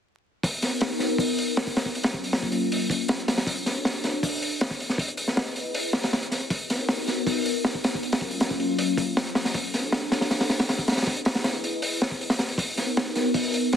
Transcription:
0.43 kick, open hi-hat
0.62 snare, open hi-hat
0.81 snare, open hi-hat
1.00 snare, open hi-hat
1.18 kick, open hi-hat
1.39 open hi-hat
1.57 snare, open hi-hat
1.67 kick
1.76 snare, open hi-hat
1.86 kick
1.95 open hi-hat
2.03 snare, open hi-hat
2.14 kick
2.24 open hi-hat
2.33 snare, open hi-hat
2.43 kick
2.52 open hi-hat
2.72 open hi-hat
2.90 kick, open hi-hat
3.08 snare, open hi-hat
3.19 closed hi-hat
3.28 snare, open hi-hat
3.38 snare, open hi-hat
3.47 kick, open hi-hat
3.66 snare, open hi-hat
3.85 snare, open hi-hat
4.04 snare, open hi-hat
4.23 kick, open hi-hat
4.42 open hi-hat
4.61 snare, open hi-hat
4.71 kick
4.80 open hi-hat
4.89 snare
4.98 kick, open hi-hat
5.08 closed hi-hat
5.17 open hi-hat
5.28 snare
5.37 snare, open hi-hat
5.56 open hi-hat
5.74 open hi-hat
5.93 snare, open hi-hat
6.03 snare, open hi-hat
6.13 snare, open hi-hat
6.23 closed hi-hat
6.31 snare, open hi-hat
6.50 kick, open hi-hat
6.70 snare, open hi-hat
6.89 snare, open hi-hat
7.08 snare, open hi-hat
7.27 kick, open hi-hat
7.46 open hi-hat
7.65 snare, open hi-hat
7.75 kick
7.84 snare, open hi-hat
7.95 kick
8.03 open hi-hat
8.12 snare, open hi-hat
8.21 kick
8.31 open hi-hat
8.40 snare, open hi-hat
8.51 kick
8.60 open hi-hat
8.79 open hi-hat
8.97 kick, open hi-hat
9.17 snare, open hi-hat
9.27 closed hi-hat
9.35 snare, open hi-hat
9.45 snare, open hi-hat
9.54 kick, open hi-hat
9.74 snare, open hi-hat
9.92 snare, open hi-hat
10.12 snare, open hi-hat
10.21 snare, open hi-hat
10.31 snare, open hi-hat
10.41 snare, open hi-hat
10.50 snare, open hi-hat
10.59 snare, open hi-hat
10.69 snare, open hi-hat
10.79 kick
10.88 snare, open hi-hat
10.92 snare, open hi-hat
10.97 snare, open hi-hat
11.02 snare, open hi-hat
11.06 kick, open hi-hat
11.17 closed hi-hat
11.25 snare, open hi-hat
11.35 snare, open hi-hat
11.44 snare, open hi-hat
11.64 open hi-hat
11.82 open hi-hat
12.02 snare, open hi-hat
12.11 kick
12.21 open hi-hat
12.30 snare, open hi-hat
12.39 snare, open hi-hat
12.49 open hi-hat
12.58 kick, open hi-hat
12.77 snare, open hi-hat
12.97 snare, open hi-hat
13.15 snare, open hi-hat
13.34 kick, open hi-hat
13.54 open hi-hat
13.73 snare, open hi-hat

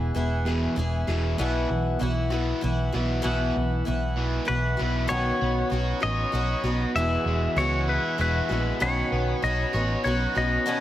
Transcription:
Already playing: E2 B2 E3 B3 E4 G#4
0.14 E1 E2 B2 E3 B3 E4 G#4
0.45 E2 B2 E3 B3 E4 G#4
0.76 E1 E2 B2 E3 B3 E4 G#4
1.07 E1 E2 B2 E3 B3 E4 G#4
1.38 B1 B2 E3 B3 E4 F#4
1.69 B1 B2 E3
1.99 B1 B2 E3 B3 E4 F#4
2.30 B2 E3 B3 E4 F#4
2.61 B1 B2 E3 B3 E4 F#4
2.92 B1 B2 E3 B3 E4 F#4
3.22 B1 B2 E3 B3 E4 F#4
3.26 B3
3.55 B1 B2 E3
3.85 B1 B2 E3 B3 E4 F#4
4.17 B2 E3 B3
4.45 B2 E3 B3 E4 F#4 B4
4.49 B1
4.77 B1 B2 E3 B3 E4 F#4
5.08 B1 B2 D#3 F#3 B3 C#4 D#4 F#4 C#5 B5
5.42 B1 B3
5.70 B1 F#3 B3 C#4 F#4
6.00 A1 F#3 B3 C#4 F#4 C#5 D#5
6.32 B1 F#3 B3 C#4 F#4
6.63 B1 F#3 B3 C#4 F#4
6.95 E1 E2 E3 G#3 B3 E4 F#4 E5 G#5
7.25 E1 G#3
7.56 C#2 G#3 B3 E4 F#4 C#5
7.88 E4 B4
8.18 E1 G#3 B3 E4 F#4 B4
8.49 A#1 G#3 B3 E4 F#4
8.80 B1 B2 D#3 F#3 B3 C#4 D#4 F#4 C#5 B5
9.12 B1 B3
9.42 B1 F#3 B3 C#4 F#4 D#5
9.73 A1 F#3 B3 C#4 F#4 C#5
10.04 B1 F#3 B3 C#4 F#4 C#5
10.35 B1 F#3 B3 C#4 F#4 D#5
10.66 B2 D#3 F#3 B3 C#4 F#4 A5

